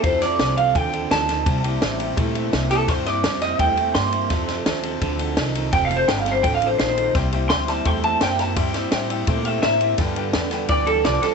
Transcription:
<<
  \new Staff \with { instrumentName = "Clean electric guitar" } { \time 4/4 \key c \mixolydian \tempo 4 = 169 c''8 d''4 f''8 g''4 a''4~ | a''2 r4. a'8 | c''8 d''4 ees''8 g''4 c'''4~ | c'''2 r2 |
\tuplet 3/2 { g''8 f''8 c''8 g''8 f''8 c''8 g''8 f''8 c''8 } c''4 | r4 c'''8 a''8 c'''8 a''8 g''8 a''8 | g''8 e''8 g''8 e''8 d''8 e''8 e''4 | r2 d''8 a'8 d''8 a'8 | }
  \new Staff \with { instrumentName = "Upright piano" } { \time 4/4 \key c \mixolydian r1 | r1 | r1 | r1 |
r1 | <c'' e'' g''>8 <c'' e'' g''>8 <c'' e'' g''>8 <c'' e'' g''>8 <c'' e'' g''>8 <c'' e'' g''>8 <c'' e'' g''>8 <c'' e'' g''>8 | <c'' e'' g''>8 <c'' e'' g''>8 <c'' e'' g''>8 <c'' e'' g''>8 <c'' e'' g''>8 <c'' e'' g''>8 <c'' e'' bes''>8 <c'' e'' g''>8 | <b' d'' g''>8 <b' d'' g''>8 <b' d'' g''>8 <b' d'' g''>8 <b' d'' g''>8 <b' d'' g''>8 <b' d'' a''>8 <b' d'' g''>8 | }
  \new Staff \with { instrumentName = "Steel-string acoustic guitar" } { \time 4/4 \key c \mixolydian <f c' ees' a'>8 <c' ees' a'>8 <f c' ees' a'>8 <c' ees' a'>8 <f c' ees' a'>8 <c' ees' a'>8 <f c' ees' a'>8 <c' ees' a'>8 | <c g bes e' g'>8 <bes e' g'>8 <g bes e' g'>8 <bes e' g'>8 <c g bes e' g'>8 <bes e' g'>8 <g bes e' g'>8 <bes e' g'>8 | <c g bes e' g'>8 <bes e' g'>8 <g bes e'>8 <bes e' g'>8 <c g bes e' g'>8 <bes e' g'>8 <g bes e' g'>8 <bes e' g'>8 | <f c' ees' a'>8 <c' ees' a'>8 <f c' ees' a'>8 <c' ees' a'>8 <f c' ees' a'>8 <c' ees' a'>8 <f c' ees' a'>8 <c' ees' a'>8 |
<f c' ees' a'>8 <c' ees' a'>8 <f c' ees' a'>8 <c' ees' a'>8 <f c' ees' a'>8 <c' ees' a'>8 <f c' ees' a'>8 <c' ees' a'>8 | <c g bes e' g'>8 <bes e' g'>8 <g bes e' g'>8 <bes e' g'>8 <c g bes e' g'>8 <bes e' g'>8 <g bes e' g'>8 <bes e' g'>8 | <c g bes e' g'>8 <bes e' g'>8 <g bes e' g'>8 <bes e' g'>8 <c g bes e' g'>8 <bes e' g'>8 <g bes e' g'>8 <bes e' g'>8 | <g, d f b f' g'>8 <f b f' g'>8 <f b f' g'>8 <f b f' g'>8 <g, d f b f' g'>8 <f b f' g'>8 <f b f' g'>8 <f b f' g'>8 | }
  \new Staff \with { instrumentName = "Clean electric guitar" } { \clef bass \time 4/4 \key c \mixolydian <f, c>8 <f, c>8 <f, c>8 <f, c>8 <f, d>8 <f, d>8 <f, ees>8 <f, ees>8 | <c g>8 <c g>8 <c g>8 <c g>8 <c a>8 <c a>8 <c bes>8 <c bes>8 | <c g>8 <c g>8 <c g>8 <c g>8 <c a>8 <c a>8 <c bes>8 <c bes>8 | <f, c>8 <f, c>8 <f, c>8 <f, c>8 <f, d>8 <f, d>8 <f, ees>8 <f, ees>8 |
<f, c>8 <f, c>8 <f, c>8 <f, c>8 <f, d>8 <f, d>8 <f, ees>8 <f, ees>8 | <c g>8 <c g>8 <c g>8 <c g>8 <c a>8 <c a>8 <c bes>8 <c bes>8 | <c g>8 <c g>8 <c g>8 <c g>8 <c a>8 <c a>8 <c bes>8 <c bes>8 | <g, d>8 <g, d>8 <g, d>8 <g, d>8 <g, e>8 <g, e>8 <g, f>8 <g, f>8 | }
  \new Staff \with { instrumentName = "Upright bass" } { \clef bass \time 4/4 \key c \mixolydian f,4 c,4 ees,4 d,4 | c,4 a,,4 bes,,4 c,4 | g,4 f,4 e,4 g,4 | f,4 ees,4 d,4 c,4 |
f,,4 g,,4 a,,4 bes,,4 | c,4 r4 e,4 fis,4 | g,4 a,4 bes,4 a,4 | g,4 e,4 d,4 c,8 r8 | }
  \new DrumStaff \with { instrumentName = "Drums" } \drummode { \time 4/4 <bd cymr>8 <cymr sn>8 <cymr sn>8 cymr8 <bd cymr>8 cymr8 <cymr sn>8 <cymr sn>8 | <bd cymr>8 cymr8 <cymr sn>8 cymr8 <bd cymr>8 cymr8 <cymr sn>8 <cymr sn>8 | <bd cymr sn>8 <cymr sn>8 <cymr sn>8 <cymr sn>8 <bd cymr>8 cymr8 <cymr sn>8 cymr8 | <bd cymr sn>8 <cymr sn>8 <cymr sn>8 cymr8 <bd cymr>8 cymr8 <cymr sn>8 cymr8 |
<bd cymr>8 cymr8 <cymr sn>8 <cymr sn>8 <bd cymr>8 cymr8 <cymr sn>8 cymr8 | <bd cymr sn>8 cymr8 <cymr sn>8 <cymr sn>8 <bd cymr>8 cymr8 <cymr sn>8 <cymr sn>8 | <bd cymr>8 <cymr sn>8 <cymr sn>8 cymr8 <bd cymr>8 cymr8 <cymr sn>8 cymr8 | <bd cymr sn>8 cymr8 <cymr sn>8 <cymr sn>8 <bd cymr>8 cymr8 <cymr sn>8 <cymr sn>8 | }
>>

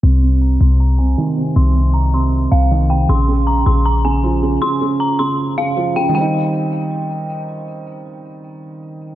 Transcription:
<<
  \new Staff \with { instrumentName = "Synth bell" } { \time 4/4 \key c \phrygian \tempo 4 = 157 c'''4 bes''8 c'''8 bes''8 aes''4. | c'''4 bes''8 c'''8 r8 f''4 g''8 | c'''4 bes''8 c'''8 bes''8 aes''4. | c'''4 bes''8 c'''8 r8 f''4 g''8 |
g''2. r4 | r1 | }
  \new Staff \with { instrumentName = "Felt piano" } { \clef bass \time 4/4 \key c \phrygian c8 c4 c4 c8 ees8 c8 | c8 c4 c4 c8 ees8 c8 | des8 des4 des4 des8 f8 des8 | des8 des4 des4 des8 f8 des8 |
<ees g c' ees'>1~ | <ees g c' ees'>1 | }
  \new Staff \with { instrumentName = "808-style bass" } { \clef bass \time 4/4 \key c \phrygian c,4. c,4. r4 | c,2~ c,8 c,4. | bes,,4. bes,,2~ bes,,8 | r1 |
r1 | r1 | }
>>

